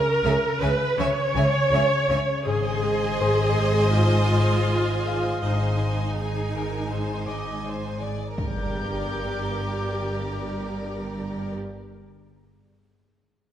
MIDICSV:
0, 0, Header, 1, 10, 480
1, 0, Start_track
1, 0, Tempo, 740741
1, 1591, Time_signature, 4, 2, 24, 8
1, 8763, End_track
2, 0, Start_track
2, 0, Title_t, "Violin section"
2, 0, Program_c, 0, 48
2, 5435, Note_on_c, 0, 86, 30
2, 5436, Note_on_c, 0, 91, 32
2, 6608, Note_off_c, 0, 91, 0
2, 7087, Note_off_c, 0, 86, 0
2, 8763, End_track
3, 0, Start_track
3, 0, Title_t, "Violin section"
3, 0, Program_c, 1, 48
3, 165, Note_on_c, 1, 80, 53
3, 217, Note_off_c, 1, 80, 0
3, 405, Note_on_c, 1, 80, 48
3, 456, Note_off_c, 1, 80, 0
3, 650, Note_on_c, 1, 80, 56
3, 702, Note_off_c, 1, 80, 0
3, 885, Note_on_c, 1, 80, 49
3, 937, Note_off_c, 1, 80, 0
3, 1131, Note_on_c, 1, 80, 47
3, 1183, Note_off_c, 1, 80, 0
3, 1371, Note_on_c, 1, 80, 47
3, 1422, Note_off_c, 1, 80, 0
3, 1602, Note_on_c, 1, 80, 58
3, 3491, Note_off_c, 1, 80, 0
3, 3536, Note_on_c, 1, 80, 40
3, 5288, Note_off_c, 1, 80, 0
3, 5434, Note_on_c, 1, 74, 44
3, 7488, Note_off_c, 1, 74, 0
3, 8763, End_track
4, 0, Start_track
4, 0, Title_t, "Harp"
4, 0, Program_c, 2, 46
4, 875, Note_on_c, 2, 80, 55
4, 2081, Note_on_c, 2, 72, 50
4, 2313, Note_off_c, 2, 80, 0
4, 3279, Note_on_c, 2, 77, 37
4, 4608, Note_off_c, 2, 72, 0
4, 4706, Note_on_c, 2, 86, 24
4, 5454, Note_off_c, 2, 77, 0
4, 7233, Note_off_c, 2, 86, 0
4, 8763, End_track
5, 0, Start_track
5, 0, Title_t, "Violin section"
5, 0, Program_c, 3, 48
5, 156, Note_on_c, 3, 73, 50
5, 159, Note_on_c, 3, 76, 51
5, 208, Note_off_c, 3, 73, 0
5, 211, Note_off_c, 3, 76, 0
5, 395, Note_on_c, 3, 76, 49
5, 396, Note_on_c, 3, 73, 49
5, 447, Note_off_c, 3, 76, 0
5, 448, Note_off_c, 3, 73, 0
5, 645, Note_on_c, 3, 73, 52
5, 646, Note_on_c, 3, 76, 56
5, 697, Note_off_c, 3, 73, 0
5, 698, Note_off_c, 3, 76, 0
5, 881, Note_on_c, 3, 76, 50
5, 883, Note_on_c, 3, 73, 47
5, 932, Note_off_c, 3, 76, 0
5, 935, Note_off_c, 3, 73, 0
5, 1119, Note_on_c, 3, 73, 51
5, 1120, Note_on_c, 3, 76, 49
5, 1170, Note_off_c, 3, 73, 0
5, 1172, Note_off_c, 3, 76, 0
5, 1360, Note_on_c, 3, 76, 46
5, 1363, Note_on_c, 3, 73, 46
5, 1412, Note_off_c, 3, 76, 0
5, 1415, Note_off_c, 3, 73, 0
5, 1596, Note_on_c, 3, 75, 60
5, 1598, Note_on_c, 3, 72, 61
5, 3488, Note_off_c, 3, 75, 0
5, 3489, Note_off_c, 3, 72, 0
5, 3507, Note_on_c, 3, 72, 37
5, 3507, Note_on_c, 3, 75, 36
5, 3932, Note_off_c, 3, 75, 0
5, 3933, Note_off_c, 3, 72, 0
5, 3990, Note_on_c, 3, 68, 35
5, 4214, Note_off_c, 3, 68, 0
5, 4227, Note_on_c, 3, 70, 37
5, 4469, Note_on_c, 3, 72, 38
5, 4470, Note_off_c, 3, 70, 0
5, 4711, Note_off_c, 3, 72, 0
5, 4717, Note_on_c, 3, 75, 38
5, 4948, Note_on_c, 3, 72, 37
5, 4955, Note_off_c, 3, 75, 0
5, 5185, Note_on_c, 3, 74, 34
5, 5190, Note_off_c, 3, 72, 0
5, 5419, Note_on_c, 3, 70, 44
5, 5428, Note_off_c, 3, 74, 0
5, 7473, Note_off_c, 3, 70, 0
5, 8763, End_track
6, 0, Start_track
6, 0, Title_t, "Viola section"
6, 0, Program_c, 4, 48
6, 0, Note_on_c, 4, 70, 91
6, 379, Note_off_c, 4, 70, 0
6, 389, Note_on_c, 4, 71, 86
6, 630, Note_off_c, 4, 71, 0
6, 632, Note_on_c, 4, 73, 92
6, 1587, Note_on_c, 4, 68, 89
6, 1592, Note_off_c, 4, 73, 0
6, 2530, Note_off_c, 4, 68, 0
6, 2559, Note_on_c, 4, 65, 75
6, 3515, Note_off_c, 4, 65, 0
6, 3519, Note_on_c, 4, 63, 48
6, 5195, Note_off_c, 4, 63, 0
6, 5435, Note_on_c, 4, 67, 52
6, 7489, Note_off_c, 4, 67, 0
6, 8763, End_track
7, 0, Start_track
7, 0, Title_t, "Cello section"
7, 0, Program_c, 5, 48
7, 161, Note_on_c, 5, 49, 59
7, 213, Note_off_c, 5, 49, 0
7, 401, Note_on_c, 5, 49, 57
7, 452, Note_off_c, 5, 49, 0
7, 638, Note_on_c, 5, 49, 56
7, 689, Note_off_c, 5, 49, 0
7, 879, Note_on_c, 5, 49, 56
7, 931, Note_off_c, 5, 49, 0
7, 1117, Note_on_c, 5, 49, 56
7, 1169, Note_off_c, 5, 49, 0
7, 1355, Note_on_c, 5, 49, 53
7, 1407, Note_off_c, 5, 49, 0
7, 1597, Note_on_c, 5, 44, 55
7, 3489, Note_off_c, 5, 44, 0
7, 3514, Note_on_c, 5, 44, 38
7, 5278, Note_off_c, 5, 44, 0
7, 5433, Note_on_c, 5, 43, 43
7, 7487, Note_off_c, 5, 43, 0
7, 8763, End_track
8, 0, Start_track
8, 0, Title_t, "Harp"
8, 0, Program_c, 6, 46
8, 0, Note_on_c, 6, 49, 69
8, 0, Note_on_c, 6, 61, 49
8, 146, Note_off_c, 6, 49, 0
8, 153, Note_on_c, 6, 49, 49
8, 387, Note_off_c, 6, 49, 0
8, 395, Note_on_c, 6, 49, 49
8, 624, Note_off_c, 6, 49, 0
8, 631, Note_on_c, 6, 49, 67
8, 872, Note_off_c, 6, 49, 0
8, 879, Note_on_c, 6, 49, 46
8, 1110, Note_off_c, 6, 61, 0
8, 1118, Note_on_c, 6, 61, 50
8, 1343, Note_off_c, 6, 61, 0
8, 1351, Note_on_c, 6, 61, 46
8, 1590, Note_on_c, 6, 44, 69
8, 1610, Note_off_c, 6, 61, 0
8, 1615, Note_off_c, 6, 49, 0
8, 1832, Note_on_c, 6, 56, 47
8, 2070, Note_off_c, 6, 44, 0
8, 2078, Note_on_c, 6, 44, 44
8, 2304, Note_off_c, 6, 44, 0
8, 2312, Note_on_c, 6, 44, 39
8, 2547, Note_off_c, 6, 44, 0
8, 2555, Note_on_c, 6, 44, 55
8, 2791, Note_off_c, 6, 44, 0
8, 2799, Note_on_c, 6, 44, 39
8, 3030, Note_off_c, 6, 56, 0
8, 3038, Note_on_c, 6, 56, 34
8, 3273, Note_off_c, 6, 56, 0
8, 3281, Note_on_c, 6, 56, 31
8, 3505, Note_off_c, 6, 44, 0
8, 3513, Note_on_c, 6, 44, 43
8, 3743, Note_off_c, 6, 56, 0
8, 3751, Note_on_c, 6, 56, 30
8, 3994, Note_off_c, 6, 44, 0
8, 4002, Note_on_c, 6, 44, 29
8, 4232, Note_off_c, 6, 44, 0
8, 4240, Note_on_c, 6, 44, 28
8, 4470, Note_off_c, 6, 44, 0
8, 4478, Note_on_c, 6, 44, 37
8, 4700, Note_off_c, 6, 44, 0
8, 4708, Note_on_c, 6, 44, 27
8, 4941, Note_off_c, 6, 56, 0
8, 4949, Note_on_c, 6, 56, 26
8, 5182, Note_off_c, 6, 56, 0
8, 5190, Note_on_c, 6, 56, 26
8, 5449, Note_off_c, 6, 44, 0
8, 5450, Note_off_c, 6, 56, 0
8, 8763, End_track
9, 0, Start_track
9, 0, Title_t, "Double bass section"
9, 0, Program_c, 7, 48
9, 153, Note_on_c, 7, 37, 56
9, 205, Note_off_c, 7, 37, 0
9, 398, Note_on_c, 7, 37, 53
9, 449, Note_off_c, 7, 37, 0
9, 632, Note_on_c, 7, 37, 56
9, 684, Note_off_c, 7, 37, 0
9, 872, Note_on_c, 7, 37, 54
9, 924, Note_off_c, 7, 37, 0
9, 1117, Note_on_c, 7, 37, 60
9, 1169, Note_off_c, 7, 37, 0
9, 1358, Note_on_c, 7, 37, 53
9, 1410, Note_off_c, 7, 37, 0
9, 1596, Note_on_c, 7, 32, 55
9, 3488, Note_off_c, 7, 32, 0
9, 3518, Note_on_c, 7, 32, 36
9, 5279, Note_off_c, 7, 32, 0
9, 5432, Note_on_c, 7, 31, 42
9, 7486, Note_off_c, 7, 31, 0
9, 8763, End_track
10, 0, Start_track
10, 0, Title_t, "Impact"
10, 0, Program_c, 8, 103
10, 5431, Note_on_c, 8, 60, 43
10, 7511, Note_off_c, 8, 60, 0
10, 8763, End_track
0, 0, End_of_file